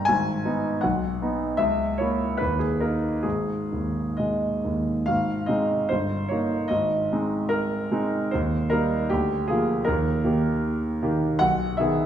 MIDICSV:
0, 0, Header, 1, 2, 480
1, 0, Start_track
1, 0, Key_signature, 5, "minor"
1, 0, Tempo, 755668
1, 57, Time_signature, 2, 2, 24, 8
1, 1017, Tempo, 807537
1, 1497, Tempo, 857143
1, 1977, Tempo, 906344
1, 2936, Key_signature, -4, "major"
1, 2937, Tempo, 810811
1, 4857, Tempo, 770218
1, 7186, End_track
2, 0, Start_track
2, 0, Title_t, "Grand piano"
2, 0, Program_c, 0, 0
2, 0, Control_c, 0, 64, 127
2, 0, Note_on_c, 0, 31, 50
2, 0, Note_on_c, 0, 43, 43
2, 0, Note_on_c, 0, 58, 41
2, 0, Note_on_c, 0, 75, 72
2, 0, Note_on_c, 0, 79, 72
2, 0, Note_on_c, 0, 82, 75
2, 33, Note_on_c, 0, 80, 78
2, 53, Note_on_c, 0, 32, 54
2, 68, Control_c, 0, 64, 0
2, 69, Note_off_c, 0, 58, 0
2, 70, Note_off_c, 0, 31, 0
2, 70, Note_off_c, 0, 79, 0
2, 72, Note_off_c, 0, 43, 0
2, 72, Note_off_c, 0, 82, 0
2, 75, Note_off_c, 0, 75, 0
2, 156, Control_c, 0, 64, 127
2, 285, Note_on_c, 0, 59, 39
2, 286, Note_on_c, 0, 63, 46
2, 505, Note_off_c, 0, 59, 0
2, 506, Note_off_c, 0, 63, 0
2, 514, Note_on_c, 0, 78, 65
2, 520, Note_off_c, 0, 32, 0
2, 524, Note_off_c, 0, 80, 0
2, 530, Note_on_c, 0, 35, 50
2, 547, Control_c, 0, 64, 0
2, 632, Control_c, 0, 64, 127
2, 763, Note_off_c, 0, 78, 0
2, 775, Note_on_c, 0, 59, 40
2, 777, Note_on_c, 0, 63, 40
2, 992, Note_off_c, 0, 59, 0
2, 994, Note_off_c, 0, 63, 0
2, 999, Note_off_c, 0, 35, 0
2, 999, Note_on_c, 0, 76, 76
2, 1009, Note_on_c, 0, 37, 51
2, 1025, Control_c, 0, 64, 0
2, 1138, Control_c, 0, 64, 127
2, 1241, Note_on_c, 0, 73, 62
2, 1244, Note_off_c, 0, 76, 0
2, 1257, Note_on_c, 0, 58, 38
2, 1257, Note_on_c, 0, 64, 40
2, 1475, Note_off_c, 0, 58, 0
2, 1475, Note_off_c, 0, 64, 0
2, 1477, Note_on_c, 0, 71, 63
2, 1479, Note_off_c, 0, 37, 0
2, 1491, Note_off_c, 0, 73, 0
2, 1495, Note_on_c, 0, 39, 45
2, 1508, Control_c, 0, 64, 0
2, 1599, Note_on_c, 0, 68, 48
2, 1605, Note_off_c, 0, 71, 0
2, 1609, Control_c, 0, 64, 127
2, 1718, Note_on_c, 0, 70, 54
2, 1725, Note_off_c, 0, 68, 0
2, 1727, Note_on_c, 0, 58, 32
2, 1733, Note_on_c, 0, 63, 37
2, 1951, Note_off_c, 0, 58, 0
2, 1954, Note_off_c, 0, 63, 0
2, 1955, Note_on_c, 0, 68, 49
2, 1961, Note_off_c, 0, 39, 0
2, 1964, Note_on_c, 0, 32, 41
2, 1969, Note_off_c, 0, 70, 0
2, 1987, Control_c, 0, 64, 0
2, 2082, Control_c, 0, 64, 127
2, 2218, Note_on_c, 0, 39, 29
2, 2454, Note_on_c, 0, 75, 55
2, 2459, Note_off_c, 0, 68, 0
2, 2468, Note_on_c, 0, 56, 32
2, 2611, Note_off_c, 0, 39, 0
2, 2706, Note_on_c, 0, 39, 31
2, 2846, Note_off_c, 0, 56, 0
2, 2909, Note_off_c, 0, 32, 0
2, 2926, Note_on_c, 0, 77, 69
2, 2929, Note_off_c, 0, 75, 0
2, 2935, Note_off_c, 0, 39, 0
2, 2939, Note_on_c, 0, 32, 48
2, 2948, Control_c, 0, 64, 0
2, 3050, Control_c, 0, 64, 127
2, 3164, Note_on_c, 0, 75, 61
2, 3173, Note_off_c, 0, 32, 0
2, 3174, Note_off_c, 0, 77, 0
2, 3176, Note_on_c, 0, 60, 33
2, 3177, Note_on_c, 0, 56, 36
2, 3181, Note_on_c, 0, 63, 36
2, 3395, Note_off_c, 0, 56, 0
2, 3395, Note_off_c, 0, 60, 0
2, 3397, Note_off_c, 0, 63, 0
2, 3412, Note_off_c, 0, 75, 0
2, 3416, Note_on_c, 0, 72, 65
2, 3430, Control_c, 0, 64, 0
2, 3430, Note_on_c, 0, 31, 45
2, 3514, Control_c, 0, 64, 127
2, 3651, Note_on_c, 0, 73, 55
2, 3658, Note_off_c, 0, 31, 0
2, 3658, Note_off_c, 0, 72, 0
2, 3667, Note_on_c, 0, 58, 39
2, 3667, Note_on_c, 0, 63, 38
2, 3880, Note_off_c, 0, 58, 0
2, 3880, Note_off_c, 0, 63, 0
2, 3884, Note_on_c, 0, 75, 69
2, 3895, Note_off_c, 0, 73, 0
2, 3900, Note_on_c, 0, 32, 48
2, 3911, Control_c, 0, 64, 0
2, 3995, Control_c, 0, 64, 127
2, 4133, Note_off_c, 0, 32, 0
2, 4148, Note_on_c, 0, 56, 39
2, 4150, Note_on_c, 0, 63, 38
2, 4151, Note_on_c, 0, 60, 37
2, 4363, Note_on_c, 0, 70, 71
2, 4371, Note_off_c, 0, 75, 0
2, 4599, Note_off_c, 0, 56, 0
2, 4599, Note_off_c, 0, 63, 0
2, 4600, Note_off_c, 0, 60, 0
2, 4616, Note_on_c, 0, 56, 41
2, 4619, Note_on_c, 0, 60, 41
2, 4623, Note_on_c, 0, 63, 43
2, 4832, Note_off_c, 0, 56, 0
2, 4833, Note_off_c, 0, 60, 0
2, 4835, Note_off_c, 0, 63, 0
2, 4849, Note_off_c, 0, 70, 0
2, 4851, Note_on_c, 0, 72, 60
2, 4865, Note_on_c, 0, 39, 51
2, 4867, Control_c, 0, 64, 0
2, 4976, Control_c, 0, 64, 127
2, 5091, Note_on_c, 0, 70, 69
2, 5100, Note_off_c, 0, 39, 0
2, 5101, Note_off_c, 0, 72, 0
2, 5105, Note_on_c, 0, 55, 39
2, 5107, Note_on_c, 0, 58, 41
2, 5108, Note_on_c, 0, 63, 46
2, 5321, Note_off_c, 0, 55, 0
2, 5322, Note_off_c, 0, 58, 0
2, 5323, Note_off_c, 0, 63, 0
2, 5338, Note_off_c, 0, 70, 0
2, 5339, Note_on_c, 0, 67, 71
2, 5352, Note_on_c, 0, 38, 55
2, 5356, Control_c, 0, 64, 0
2, 5458, Control_c, 0, 64, 127
2, 5576, Note_on_c, 0, 68, 61
2, 5580, Note_off_c, 0, 38, 0
2, 5581, Note_off_c, 0, 67, 0
2, 5591, Note_on_c, 0, 53, 40
2, 5591, Note_on_c, 0, 58, 40
2, 5595, Note_on_c, 0, 65, 46
2, 5802, Note_off_c, 0, 53, 0
2, 5802, Note_off_c, 0, 58, 0
2, 5804, Note_off_c, 0, 65, 0
2, 5806, Note_on_c, 0, 70, 70
2, 5818, Note_off_c, 0, 68, 0
2, 5822, Note_on_c, 0, 39, 54
2, 5834, Control_c, 0, 64, 0
2, 5932, Control_c, 0, 64, 127
2, 6052, Note_off_c, 0, 39, 0
2, 6054, Note_on_c, 0, 58, 41
2, 6056, Note_on_c, 0, 51, 40
2, 6062, Note_on_c, 0, 67, 46
2, 6291, Note_off_c, 0, 70, 0
2, 6513, Note_off_c, 0, 58, 0
2, 6514, Note_off_c, 0, 51, 0
2, 6517, Note_off_c, 0, 67, 0
2, 6542, Note_on_c, 0, 51, 46
2, 6542, Note_on_c, 0, 58, 46
2, 6549, Note_on_c, 0, 67, 50
2, 6756, Note_off_c, 0, 51, 0
2, 6756, Note_off_c, 0, 58, 0
2, 6760, Note_off_c, 0, 67, 0
2, 6768, Note_on_c, 0, 78, 90
2, 6782, Note_on_c, 0, 35, 58
2, 6790, Control_c, 0, 64, 0
2, 6887, Control_c, 0, 64, 127
2, 7007, Note_on_c, 0, 76, 64
2, 7010, Note_off_c, 0, 35, 0
2, 7010, Note_off_c, 0, 78, 0
2, 7021, Note_on_c, 0, 51, 44
2, 7021, Note_on_c, 0, 59, 42
2, 7026, Note_on_c, 0, 68, 47
2, 7186, Note_off_c, 0, 51, 0
2, 7186, Note_off_c, 0, 59, 0
2, 7186, Note_off_c, 0, 68, 0
2, 7186, Note_off_c, 0, 76, 0
2, 7186, End_track
0, 0, End_of_file